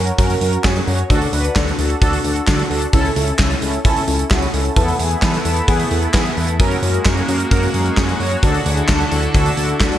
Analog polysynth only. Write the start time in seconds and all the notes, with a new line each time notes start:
Already playing: C#4 F#4 A#4
0.18 C#4 F#4 A#4
0.41 C#4 F#4 A#4
0.64 C#4 F#4 G#4
0.87 C#4 F#4 C#5
1.10 D4 F#4 A4
1.33 D4 F#4 B4
1.56 D4 F#4 A4
1.79 D4 F#4 A4
2.02 D4 F#4 A4
2.25 D4 F#4 A4
2.47 D4 F#4 A4
2.70 D4 F#4 A4
2.93 C#4 E4 A4
3.16 C#4 E4 A4
3.39 C#4 E4 A4
3.62 C#4 E4 A4
3.85 C#4 E4 A4
4.08 C#4 E4 A4
4.31 C#4 E4 F#4
4.54 C#4 E4 A4
4.76 B3 E4 A4
4.99 B3 E4 G#4
5.22 B3 E4 A4
5.45 B3 E4 A4
5.68 B3 E4 G#4
5.91 B3 E4 A4
6.14 B3 E4 G#4
6.37 B3 E4 A4
6.60 C#4 F#4 A#4
6.83 C#4 F#4 A#4
7.05 C#4 F#4 A#4
7.28 C#4 F#4 A#4
7.51 C#4 F#4 A#4
7.74 C#4 F#4 A#4
7.97 C#4 F#4 G#4
8.20 C#4 F#4 C#5
8.43 D4 F#4 A4
8.66 D4 F#4 G#4
8.89 D4 F#4 A4
9.12 D4 F#4 A4
9.34 D4 F#4 A4
9.57 D4 F#4 A4
9.80 D4 F#4 A4